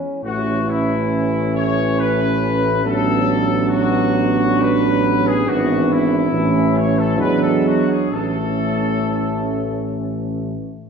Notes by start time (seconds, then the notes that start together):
Already playing: C#4
0.23 A1 E3 A3 C#4 F#4
0.68 E4
1.54 C#5
1.98 B4
2.84 F#3 B3 D4 A4
3.69 F#4
4.61 B4
5.26 G#4
5.46 G#1 E3 B3 D4 F#4
5.91 E4
6.32 A1 E3 A3 C#4
6.76 C#5
6.99 A4
7.17 E2 F#3 G#3 D4 B4
7.41 A4
7.65 F#4
7.89 G#4
8.10 A1 E3 A3 C#4 A4